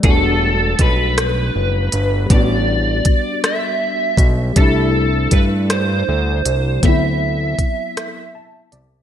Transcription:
<<
  \new Staff \with { instrumentName = "Lead electric guitar" } { \time 6/8 \key e \minor \tempo 4. = 53 a'4 b'2 | d''4. e''4 r8 | a'4 b'8 c''4. | e''2~ e''8 r8 | }
  \new Staff \with { instrumentName = "Tine electric piano" } { \time 6/8 \key e \minor r2. | r2. | r2. | r2 a''8 d''8 | }
  \new Staff \with { instrumentName = "Tine electric piano" } { \time 6/8 \key e \minor <g a d' fis'>2. | <g b d' fis'>2. | <g a d' e'>2. | <fis b c' e'>2. | }
  \new Staff \with { instrumentName = "Analog synth bass" } { \clef bass \time 6/8 \key e \minor e,,4 b,,4 fis,,8 g,,8 | a,,4 b,,8 r4 b,,8 | c,4 g,4 d,8 c,8 | d,4 c,8 r4 c,8 | }
  \new DrumStaff \with { instrumentName = "Drums" } \drummode { \time 6/8 <hh bd>4 <hh bd>8 <hh ss>4 hh8 | <hh bd>4 <hh bd>8 <hh ss>4 <hh bd>8 | <hh bd>4 <hh bd>8 <hh ss>4 hh8 | <hh bd>4 <hh bd>8 <hh ss>4 hh8 | }
>>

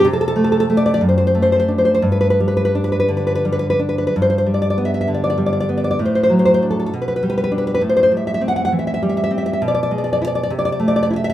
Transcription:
\new Staff \with { instrumentName = "Nylon-string guitar" } { \time 6/8 \key g \major \tempo 4. = 65 << { r32 a'32 a'32 a'32 r32 a'32 a'32 a'32 r32 d''32 d''32 d''32 r32 c''32 c''32 c''32 r32 c''32 c''32 c''32 r32 c''32 c''32 c''32 | r32 b'32 b'32 b'32 r32 b'32 b'32 b'32 r32 b'32 b'32 b'32 r32 b'32 b'32 b'32 r32 b'32 b'32 b'32 r32 b'32 b'32 b'32 | r32 c''32 c''32 c''32 r32 d''32 d''32 d''32 r32 e''32 e''32 e''32 r32 d''32 d''32 d''32 r32 d''32 d''32 d''32 r32 d''32 d''32 d''32 | r32 c''32 c''32 c''32 r32 c''32 c''32 c''32 r32 a'32 a'32 a'32 r32 b'32 b'32 b'32 r32 b'32 b'32 b'32 r32 b'32 b'32 b'32 |
r32 c''32 c''32 c''32 r32 e''32 e''32 e''32 r32 fis''32 fis''32 fis''32 r32 e''32 e''32 e''32 r32 e''32 e''32 e''32 r32 e''32 e''32 e''32 | r32 d''32 d''32 d''32 r32 d''32 d''32 d''32 r32 d''32 d''32 d''32 r32 d''32 d''32 d''32 r32 d''32 d''32 d''32 r32 e''32 e''32 e''32 | } \\ { c8 a8 a8 fis,8 a8 d'8 | g,8 g8 d'8 d8 g8 d'8 | g,8 g8 b8 d8 g8 b8 | a,8 fis8 d'8 b,8 g8 d'8 |
a,8 g8 c'8 e8 g8 c'8 | b,8 gis8 e'8 c8 a8 e'8 | } >> }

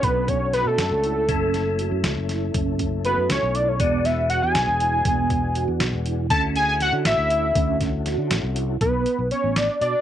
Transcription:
<<
  \new Staff \with { instrumentName = "Analog synth lead" } { \time 5/8 \key b \dorian \tempo 4 = 120 b'8 cis''8 b'16 a'4~ a'16~ | a'4~ a'16 r4 r16 | r4 b'8 cis''8 d''16 cis''16 | d''8 e''8 fis''16 gis''4~ gis''16~ |
gis''4~ gis''16 r4 r16 | a''8 gis''16 gis''16 fis''8 e''4~ | e''8 r2 | b'4 cis''8 d''8 d''8 | }
  \new Staff \with { instrumentName = "Tonewheel organ" } { \time 5/8 \key b \dorian <cis' d' fis' a'>2~ <cis' d' fis' a'>8 | <a cis' e' a'>2~ <a cis' e' a'>8~ | <a cis' e' a'>2~ <a cis' e' a'>8 | <b d' fis' gis'>2~ <b d' fis' gis'>8~ |
<b d' fis' gis'>2~ <b d' fis' gis'>8 | <cis' e' fis' a'>2~ <cis' e' fis' a'>8~ | <cis' e' fis' a'>2~ <cis' e' fis' a'>8 | r2 r8 | }
  \new Staff \with { instrumentName = "Vibraphone" } { \time 5/8 \key b \dorian b4 fis'4 e'8 | cis'4 fis'4 e'8 | cis'4 fis'4 e'8 | b4 fis'4 e'8 |
b4 fis'4 e'8 | cis'4 fis'4 e'8 | cis'4 fis'4 e'8 | b4 b4 fis'8 | }
  \new Staff \with { instrumentName = "Fretless electric bass" } { \clef bass \time 5/8 \key b \dorian b,,4~ b,,16 b,16 fis,16 cis,8. | fis,,4~ fis,,16 fis,16 cis,16 fis,,8. | fis,,4~ fis,,16 fis,16 cis,16 b,,8. | e,,4~ e,,16 e,16 b,,16 e,,8. |
e,,4~ e,,16 e,16 b,,16 e,,8. | d,4~ d,16 d16 a,,16 d,8. | d,4~ d,16 d16 a,,16 bis,,8. | b,,8 r16 b,,16 r16 a,,8 r16 b,16 r16 | }
  \new DrumStaff \with { instrumentName = "Drums" } \drummode { \time 5/8 <hh bd>8 <hh bd>8 <hh sn>8 <hh sn>8 hh8 | <hh bd>8 <hh sn>8 hh8 <hh sn>8 <hh sn>8 | <hh bd>8 <hh bd>8 hh8 <hh sn>8 hh8 | <hh bd>8 <hh sn>8 hh8 <hh sn>8 hh8 |
<hh bd>8 <hh bd>8 hh8 <hh sn>8 hh8 | <hh bd>8 hh8 <hh sn>8 <hh sn>8 hh8 | <hh bd>8 <hh bd sn>8 <hh sn>8 <hh sn>8 hh8 | <hh bd>8 hh8 hh8 <hh sn>8 hh8 | }
>>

